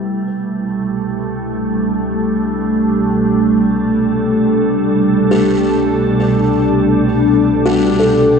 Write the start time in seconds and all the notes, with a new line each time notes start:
Already playing: C2 B2 G3 A3 E4
1.33 D4
3.35 A4
5.31 G4
7.66 F#4
8.00 A4